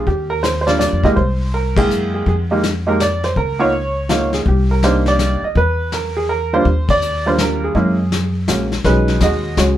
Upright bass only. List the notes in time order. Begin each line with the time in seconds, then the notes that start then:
0.07 D#2
0.92 F2
1.04 C#2
1.17 C2
1.90 F#2
2.26 F2
3.36 C#2
4.46 C2
5.42 muted upright bass stroke
5.55 E2
6.65 D#2
7.75 F#2
8.47 A#1
8.84 B1
9.21 D#2
9.57 C#2